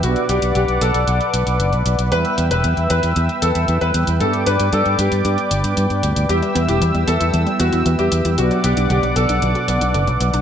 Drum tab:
HH |xxxxxxxxxxxxxxxx|xxxxxxxxxxxxxxxx|xxxxxxxxxxxxxxxx|xxxxxxxxxxxxxxxx|

HH |xxxxxxxxxxxxxxxx|